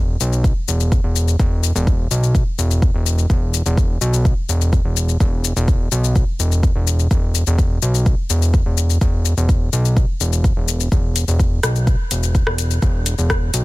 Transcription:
Already playing: E1
0.20 B1, shaker
0.33 shaker
0.44 kick, shaker
0.68 E1, shaker
0.80 shaker
0.92 kick, shaker
1.04 E1
1.16 shaker
1.28 shaker
1.40 E1, kick, shaker
1.63 shaker
1.75 E1, shaker
1.87 kick, shaker
2.11 B1, shaker
2.23 shaker
2.35 kick, shaker
2.58 E1, shaker
2.71 shaker
2.82 kick, shaker
2.94 E1
3.06 shaker
3.18 shaker
3.30 E1, kick, shaker
3.54 shaker
3.66 E1, shaker
3.77 kick, shaker
4.01 B1, shaker
4.13 shaker
4.25 kick, shaker
4.49 E1, shaker
4.61 shaker
4.73 kick, shaker
4.85 E1
4.97 shaker
5.09 shaker
5.20 E1, kick, shaker
5.44 shaker
5.56 E1, shaker
5.68 kick, shaker
5.92 B1, shaker
6.04 shaker
6.16 kick, shaker
6.39 E1, shaker
6.52 shaker
6.63 kick, shaker
6.75 E1
6.87 shaker
6.99 shaker
7.11 E1, kick, shaker
7.35 shaker
7.47 E1, shaker
7.59 kick, shaker
7.82 B1, shaker
7.94 shaker
8.06 kick, shaker
8.30 E1, shaker
8.42 shaker
8.54 kick, shaker
8.66 E1
8.77 shaker
8.90 shaker
9.01 E1, kick, shaker
9.25 shaker
9.37 E1, shaker
9.49 kick, shaker
9.73 B1, shaker
9.85 shaker
9.97 kick, shaker
10.20 E1, shaker
10.33 shaker
10.44 kick, shaker
10.56 E1
10.68 shaker
10.80 shaker
10.92 E1, kick, shaker
11.16 closed hi-hat, shaker
11.28 E1, shaker
11.40 kick, shaker
11.63 B1, cross-stick, closed hi-hat, shaker
11.76 shaker
11.87 kick, shaker
12.11 E1, closed hi-hat, shaker
12.23 shaker
12.35 kick, shaker
12.47 E1, cross-stick
12.58 closed hi-hat, shaker
12.71 shaker
12.82 E1, kick, shaker
13.06 closed hi-hat, shaker
13.18 E1, shaker
13.30 kick, cross-stick, shaker
13.54 B1, closed hi-hat, shaker

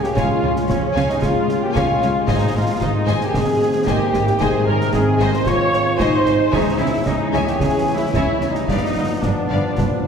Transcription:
Already playing: C#3 G#3 C#4 G#4
0.00 G4 C#5 G5, snare
0.05 A#3
0.15 C#2 C#3 G#3 F4 C#5 F5 G#5, concert bass drum, snare
0.34 C#4
0.42 C#2 C#3 C#5 F5 G#5
0.51 G#4
0.56 snare
0.68 C#2 C#3 F3 C#4 C#5 F5, concert bass drum, snare
0.86 G#4
0.94 C#2 C#3 C#5 F5 G#5, snare
1.04 C#5
1.09 G3 D#4 D#5, snare
1.21 C#2 C#3 G#3 F4 C#5 F5 G#5, concert bass drum, snare
1.40 C#4
1.49 snare
1.58 G#4 G5
1.63 A#3 G4
1.74 C#2 C#3 G#3 F4 C#5 F5 G#5, concert bass drum, snare
1.93 G#4
2.00 C#2 C#3 C#5 F5 G#5, snare
2.10 C#5
2.27 G#1 G#2 C3 D#3 G#3 D#4 C5 D#5 G#5, concert bass drum, snare, crash
2.47 G#3
2.53 G#1 G#2 G#3 F4 C5 D#5 F5 G#5
2.64 C4
2.81 G#1 G#2 G#3 D#4 G#4 C5 D#5, concert bass drum, snare
2.99 D#5
3.07 G#1 G#2 C5 D#5 G#5, snare
3.21 A#3 G4 G5, snare
3.34 G#1 G#2 D#3 C4 G#4 C5 D#5 G#5, concert bass drum, snare
3.52 G#3
3.86 G#1 G#2 A#3 G4 G#4 C5 D#5 G5 G#5, concert bass drum, snare
4.13 G#1 G#2 C5 D#5 G#5, snare
4.27 snare
4.40 G#1 G#2 C4 G#4 C5 D#5 G#5, concert bass drum, snare
4.58 G#3
4.67 G#1 G#2 C#4 A#4 C5 D#5 G#5 A#5
4.81 snare
4.92 G#1 G#2 C4 G#4 C5 D#5 G#5, concert bass drum, snare
5.20 G#1 G#2 C5 D#5 G#5, snare
5.33 D#4 C5 C6, snare
5.46 G#1 G#2 D#3 F4 C5 C#5 D#5 G#5 C#6, concert bass drum, snare
5.64 G#3
5.73 snare
5.82 C5
5.99 G#1 G#2 D#4 G#4 C5 D#5 G#5 C6, concert bass drum, snare
6.26 G#1 G#2 C5 D#5 G#5, snare
6.51 C#2 C#3 E3 G#3 C#4 D#4 C#5 D#5 E5 G#5, concert bass drum, snare
6.70 G#3
6.79 C#2 C#3 G#3 E4 C#5 E5 G#5
6.87 C#5
7.05 C#2 C#3 G#3 D#4 G#4 C#5 D#5 E5, concert bass drum, snare
7.23 C#5
7.33 C#2 C#3 C#5 E5 G#5, snare
7.41 E4
7.46 A#3 G4 G5, snare
7.58 C#2 C#3 C#4 G#4 E5 G#5, concert bass drum, snare
7.62 C#5
7.77 G#3
7.95 G#3 E4 C#5 E5
8.13 C#2 C#3 G#3 E4 G#4 C#5 E5 G#5, concert bass drum, snare
8.31 C#5
8.41 C#2 C#3 C#5 E5 G#5, snare
8.49 G3 D#4 E4 D#5
8.55 snare
8.67 G1 G2 F3 B3 D#4 B4 D5 D#5 F5, concert bass drum, snare
8.86 B3
8.96 G1 G2 B4 D5 F5
9.05 D5
9.22 G1 G2 F3 D4 B4 D5, concert bass drum, snare
9.41 D5
9.50 G1 G2 B4 D5 F5
9.59 F4
9.77 G1 G2 D3 B4 D5 F5, concert bass drum, snare
9.95 B3

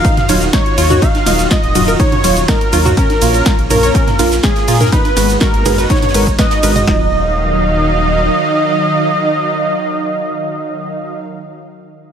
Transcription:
Already playing: D#3 D#4 F4 F#4 F5
0.05 D#4, kick, closed hi-hat, cabasa
0.17 snare, closed hi-hat, mid tom
0.29 D#1 F#3 F4 C#5, closed hi-hat, open hi-hat, ride, high conga, cabasa
0.42 snare, closed hi-hat, cabasa
0.53 D#4 C#5, kick, snare, closed hi-hat, cabasa
0.66 closed hi-hat
0.78 D#2 F#3 F4 C#5, closed hi-hat, open hi-hat, ride, cabasa
0.90 F#4, closed hi-hat, mid tom, high conga, cabasa
1.02 D#4 F5, kick, closed hi-hat, cabasa
1.15 snare, closed hi-hat, high conga
1.26 D#1 F#3 F4 D#5, snare, closed hi-hat, open hi-hat, ride, cabasa
1.39 snare, closed hi-hat, cabasa
1.50 F4 D#5, kick, snare, closed hi-hat, cabasa
1.63 D#1, closed hi-hat
1.75 D#1 F#3 F4 F#4 D#5, closed hi-hat, mid tom, open hi-hat, ride, high conga, cabasa
1.88 A#4, closed hi-hat, cabasa
2.00 D#4 C#5, kick, closed hi-hat, open hi-hat, cabasa
2.12 closed hi-hat, mid tom, high conga
2.24 D#1 F#3 F4 C#5, closed hi-hat, open hi-hat, ride, cabasa
2.37 closed hi-hat, cabasa
2.48 D#4 A#4, kick, snare, closed hi-hat, cabasa
2.61 closed hi-hat
2.73 D#2 F#3 F4 C#5, closed hi-hat, open hi-hat, ride, high conga, cabasa
2.85 F#4, closed hi-hat, mid tom, cabasa
2.97 A#3 C#4 A#4, kick, closed hi-hat, cabasa
3.10 snare, closed hi-hat, high conga
3.21 A#1 A#2 A#3 F4 C#5, closed hi-hat, open hi-hat, ride, cabasa
3.34 closed hi-hat, cabasa
3.45 F4, kick, snare, closed hi-hat, cabasa
3.59 A#1, closed hi-hat
3.70 A#1 A#2 A#3 F4 A#4 C#5, closed hi-hat, mid tom, open hi-hat, ride, high conga, cabasa
3.83 C#5, closed hi-hat, cabasa
3.95 C#4, kick, closed hi-hat, cabasa
4.07 snare, closed hi-hat, mid tom
4.19 A#1 A#2 A#3 F4 A#4, snare, closed hi-hat, open hi-hat, ride, high conga, cabasa
4.32 snare, closed hi-hat, cabasa
4.43 C#4 G#4, kick, snare, closed hi-hat, cabasa
4.56 snare, closed hi-hat
4.68 A#2 A#3 F4 A#4, snare, closed hi-hat, open hi-hat, ride, cabasa
4.74 snare, closed hi-hat
4.80 A#4, snare, closed hi-hat, mid tom, high conga, cabasa
4.86 snare, closed hi-hat
4.92 G#3 B3 D#4 F#4 B4, kick, closed hi-hat, cabasa
5.05 snare, closed hi-hat, high conga
5.17 G#1 G#2 G#3 F#4 B4, snare, closed hi-hat, open hi-hat, ride, cabasa
5.29 snare, closed hi-hat, cabasa
5.40 F#4 A#4, kick, snare, closed hi-hat, cabasa
5.54 G#1, closed hi-hat
5.65 G#1 G#2 G#3 F#4 G#4 B4, closed hi-hat, mid tom, open hi-hat, ride, high conga, cabasa
5.78 B4, snare, closed hi-hat, cabasa
5.89 D#4 C#5, kick, snare, closed hi-hat, cabasa
5.96 snare, closed hi-hat
6.02 snare, closed hi-hat, mid tom, high conga
6.09 snare, closed hi-hat
6.14 G#1 G#2 G#3 F#4 A#4 B4, snare, closed hi-hat, open hi-hat, ride, cabasa
6.27 kick, closed hi-hat, cabasa
6.39 B4 D#5, kick, snare, closed hi-hat, cabasa
6.51 snare, closed hi-hat
6.63 G#1 G#3 F#4 A#4 B4, open hi-hat, ride, high conga, cabasa
6.76 D#5, closed hi-hat, mid tom, cabasa
6.87 D#1 D#3 F#3 D#4 F4 D#5 F5, kick, snare

